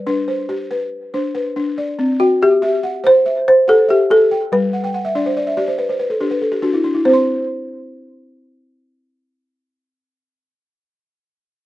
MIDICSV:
0, 0, Header, 1, 3, 480
1, 0, Start_track
1, 0, Tempo, 422833
1, 2239, Time_signature, 12, 3, 24, 8
1, 13227, End_track
2, 0, Start_track
2, 0, Title_t, "Balafon"
2, 0, Program_c, 0, 12
2, 0, Note_on_c, 0, 74, 54
2, 74, Note_on_c, 0, 71, 65
2, 75, Note_on_c, 0, 62, 82
2, 310, Note_off_c, 0, 74, 0
2, 315, Note_on_c, 0, 72, 66
2, 553, Note_off_c, 0, 62, 0
2, 555, Note_on_c, 0, 67, 73
2, 789, Note_off_c, 0, 71, 0
2, 802, Note_on_c, 0, 71, 70
2, 1035, Note_off_c, 0, 67, 0
2, 1036, Note_off_c, 0, 72, 0
2, 1292, Note_on_c, 0, 72, 60
2, 1293, Note_on_c, 0, 62, 69
2, 1515, Note_off_c, 0, 71, 0
2, 1529, Note_on_c, 0, 71, 66
2, 1760, Note_off_c, 0, 62, 0
2, 1773, Note_on_c, 0, 62, 81
2, 2006, Note_off_c, 0, 72, 0
2, 2018, Note_on_c, 0, 74, 65
2, 2245, Note_off_c, 0, 71, 0
2, 2247, Note_off_c, 0, 62, 0
2, 2255, Note_on_c, 0, 60, 80
2, 2490, Note_off_c, 0, 74, 0
2, 2501, Note_on_c, 0, 79, 59
2, 2729, Note_off_c, 0, 60, 0
2, 2746, Note_on_c, 0, 76, 59
2, 2965, Note_off_c, 0, 76, 0
2, 2975, Note_on_c, 0, 67, 78
2, 2978, Note_on_c, 0, 76, 73
2, 3213, Note_off_c, 0, 79, 0
2, 3217, Note_on_c, 0, 78, 64
2, 3448, Note_on_c, 0, 72, 77
2, 3450, Note_off_c, 0, 67, 0
2, 3684, Note_off_c, 0, 76, 0
2, 3698, Note_on_c, 0, 76, 61
2, 3927, Note_off_c, 0, 72, 0
2, 3932, Note_off_c, 0, 78, 0
2, 4173, Note_on_c, 0, 78, 62
2, 4176, Note_on_c, 0, 67, 65
2, 4396, Note_off_c, 0, 76, 0
2, 4410, Note_on_c, 0, 76, 67
2, 4645, Note_off_c, 0, 67, 0
2, 4659, Note_on_c, 0, 67, 85
2, 4890, Note_off_c, 0, 78, 0
2, 4897, Note_on_c, 0, 79, 65
2, 5129, Note_off_c, 0, 76, 0
2, 5132, Note_on_c, 0, 55, 81
2, 5133, Note_off_c, 0, 67, 0
2, 5370, Note_on_c, 0, 78, 58
2, 5372, Note_off_c, 0, 79, 0
2, 5492, Note_on_c, 0, 79, 65
2, 5592, Note_off_c, 0, 78, 0
2, 5610, Note_off_c, 0, 55, 0
2, 5610, Note_on_c, 0, 78, 59
2, 5713, Note_off_c, 0, 79, 0
2, 5730, Note_on_c, 0, 76, 70
2, 5832, Note_off_c, 0, 78, 0
2, 5848, Note_on_c, 0, 62, 82
2, 5850, Note_on_c, 0, 74, 68
2, 5952, Note_off_c, 0, 76, 0
2, 5972, Note_on_c, 0, 72, 73
2, 6072, Note_off_c, 0, 74, 0
2, 6093, Note_on_c, 0, 74, 70
2, 6193, Note_off_c, 0, 72, 0
2, 6209, Note_on_c, 0, 76, 62
2, 6310, Note_off_c, 0, 74, 0
2, 6324, Note_on_c, 0, 67, 76
2, 6324, Note_on_c, 0, 74, 64
2, 6328, Note_off_c, 0, 62, 0
2, 6431, Note_off_c, 0, 76, 0
2, 6445, Note_on_c, 0, 72, 67
2, 6548, Note_off_c, 0, 74, 0
2, 6563, Note_on_c, 0, 71, 65
2, 6669, Note_off_c, 0, 72, 0
2, 6688, Note_on_c, 0, 72, 62
2, 6788, Note_off_c, 0, 71, 0
2, 6805, Note_off_c, 0, 67, 0
2, 6806, Note_on_c, 0, 71, 56
2, 6911, Note_off_c, 0, 72, 0
2, 6923, Note_on_c, 0, 69, 61
2, 7029, Note_off_c, 0, 71, 0
2, 7043, Note_on_c, 0, 67, 62
2, 7046, Note_on_c, 0, 62, 72
2, 7148, Note_off_c, 0, 69, 0
2, 7161, Note_on_c, 0, 71, 63
2, 7268, Note_off_c, 0, 67, 0
2, 7283, Note_on_c, 0, 69, 65
2, 7387, Note_off_c, 0, 71, 0
2, 7398, Note_on_c, 0, 67, 61
2, 7507, Note_off_c, 0, 62, 0
2, 7507, Note_off_c, 0, 69, 0
2, 7518, Note_on_c, 0, 66, 69
2, 7520, Note_on_c, 0, 62, 76
2, 7624, Note_off_c, 0, 67, 0
2, 7642, Note_on_c, 0, 64, 64
2, 7744, Note_off_c, 0, 66, 0
2, 7751, Note_off_c, 0, 62, 0
2, 7765, Note_on_c, 0, 62, 65
2, 7866, Note_off_c, 0, 64, 0
2, 7884, Note_on_c, 0, 64, 61
2, 7988, Note_off_c, 0, 62, 0
2, 8005, Note_on_c, 0, 60, 72
2, 8050, Note_on_c, 0, 72, 70
2, 8098, Note_on_c, 0, 84, 71
2, 8107, Note_off_c, 0, 64, 0
2, 11499, Note_off_c, 0, 60, 0
2, 11545, Note_off_c, 0, 72, 0
2, 11593, Note_off_c, 0, 84, 0
2, 13227, End_track
3, 0, Start_track
3, 0, Title_t, "Balafon"
3, 0, Program_c, 1, 12
3, 0, Note_on_c, 1, 71, 67
3, 255, Note_off_c, 1, 71, 0
3, 2495, Note_on_c, 1, 66, 86
3, 2735, Note_off_c, 1, 66, 0
3, 2754, Note_on_c, 1, 67, 91
3, 3481, Note_off_c, 1, 67, 0
3, 3481, Note_on_c, 1, 72, 96
3, 3937, Note_off_c, 1, 72, 0
3, 3951, Note_on_c, 1, 72, 98
3, 4185, Note_off_c, 1, 72, 0
3, 4189, Note_on_c, 1, 69, 90
3, 4425, Note_off_c, 1, 69, 0
3, 4432, Note_on_c, 1, 67, 77
3, 4666, Note_off_c, 1, 67, 0
3, 4667, Note_on_c, 1, 69, 91
3, 5139, Note_on_c, 1, 71, 85
3, 5152, Note_off_c, 1, 69, 0
3, 7486, Note_off_c, 1, 71, 0
3, 8007, Note_on_c, 1, 72, 75
3, 11456, Note_off_c, 1, 72, 0
3, 13227, End_track
0, 0, End_of_file